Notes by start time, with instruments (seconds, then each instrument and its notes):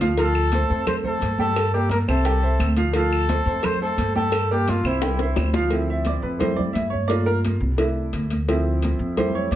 Already playing: upright bass D2
0.01 grand piano F3 F4 F5, cowbell, high conga
0.17 grand piano F3 F4 F5, flugelhorn A4, cowbell
0.35 high conga, claves
0.52 grand piano A3 A4 C5, cowbell, high conga
0.69 upright bass F2, grand piano A3 A4 C5
0.87 flugelhorn C5, cowbell, high conga, low conga, claves
1.04 grand piano A3 A4 C5, flugelhorn A4, high conga, low conga
1.21 upright bass G2, cowbell, high conga
1.38 grand piano G3 G4 G5, flugelhorn A4, high conga
1.55 cowbell, high conga, claves
1.72 grand piano A#3 A#4 D5, flugelhorn G4, high conga
1.89 flugelhorn A#4, cowbell, high conga
2.07 upright bass C2, grand piano C4 C5 E5, flugelhorn A4, high conga, claves
2.25 grand piano G3 G4 G5, cowbell, high conga
2.42 grand piano C4 C5 E5, high conga
2.59 upright bass D2, cowbell, high conga, claves
2.77 grand piano F3 F4 F5, cowbell, high conga
2.93 grand piano F3 F4 F5, flugelhorn A4, cowbell
3.12 high conga, claves
3.29 grand piano A3 A4 C5, cowbell, high conga
3.46 upright bass F2, grand piano A3 A4 C5
3.63 flugelhorn C5, cowbell, high conga, low conga, claves
3.81 grand piano A3 A4 C5, flugelhorn A4, high conga
3.97 upright bass G2, cowbell, high conga
4.15 grand piano G3 G4 G5, flugelhorn A4, high conga
4.32 cowbell, high conga, claves
4.51 grand piano A#3 A#4 D5, flugelhorn G4, high conga
4.68 flugelhorn F4, cowbell, high conga
4.83 upright bass C2, grand piano C4 C5 E5, flugelhorn E4, high conga, claves
5.02 grand piano G3 G4 G5, cowbell, high bongo, high conga
5.19 grand piano C4 C5 E5, high bongo, high conga
5.36 upright bass D2, cowbell, low bongo, high conga, claves
5.53 grand piano F3 F4 F5, cowbell, low bongo, high conga
5.70 grand piano F3 C4 E4, cowbell, high conga
5.89 grand piano E5, high conga
6.05 grand piano D5, cowbell, high conga
6.22 upright bass F2, grand piano B4
6.39 grand piano G3 A3 E4 C5, cowbell, high conga, low conga
6.56 grand piano D5, high conga, low conga
6.73 upright bass G2, grand piano E5, cowbell, high conga
6.90 grand piano C#5, high conga
7.07 grand piano A3 A#3 F4 D5, cowbell, high conga
7.26 grand piano A#4, high conga
7.45 cowbell, high conga
7.60 upright bass C2, high conga
7.77 grand piano A3 D4 E4, cowbell, high conga
7.98 high conga
8.13 upright bass D2, cowbell, high conga
8.30 cowbell, high conga
8.48 grand piano F3 C4 E4, cowbell, high conga
8.67 high conga
8.82 cowbell, high conga
8.99 upright bass F2
9.17 grand piano G3 A3 E4 C5, cowbell, high conga, low conga
9.35 grand piano C#5, high conga
9.51 upright bass G2, grand piano D5, cowbell, high conga